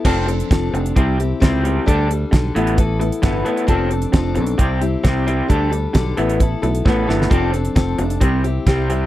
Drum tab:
CC |x---------------|----------------|----------------|----------------|
HH |--xxx-xxx-x-x-x-|x-x-x-xxx-xxx-xx|x-xxx-xxx-x-x-x-|x-x-x-xxx-xx----|
SD |----o-------o---|----o-------o---|----o-------o---|----o-------o-oo|
BD |o---o---o---o---|o---o---o---o---|o---o---o---o---|o---o---o---o---|

CC |----------------|
HH |x-xxx-xxx-x-x-x-|
SD |----o-------o---|
BD |o---o---o---o---|